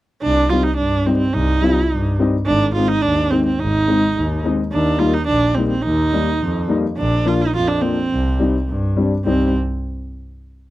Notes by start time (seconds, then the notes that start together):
0.22 C2 D4
0.50 G3 C4 D#4 F4
0.64 D#4
0.77 G2 D4
1.06 G3 C4 D#4
1.18 C4
1.33 C2 D#4
1.62 G3 C4 F4
1.91 G2
2.19 G3 C4 D#4
2.46 G#1 D4
2.75 G#3 C4 D#4 F4
2.88 D#4
3.02 D#2 D4
3.31 G#3 C4 D#4
3.46 C4
3.60 G#1 D#4
3.88 G#3 C4 D#4
4.16 D#2
4.44 G#3 C4 D#4
4.72 D#2 D4
4.98 G3 A#3 D#4 F4
5.14 D#4
5.27 A#1 D4
5.55 G3 A#3 C4
5.59 D#4
5.69 C4
5.82 D#2 D#4
6.13 G3 A#3 D#4
6.41 F2
6.68 G3 A#3 D#4
6.97 A#1 D4
7.25 F3 A#3 D4 F4
7.41 D#4
7.55 F2 F4
7.68 D4
7.80 F3 A#3 C4 D4
8.12 C2
8.39 G3 C4 D#4
8.68 G2
8.97 G3 C4 D4
9.25 C2 G3 C4 D#4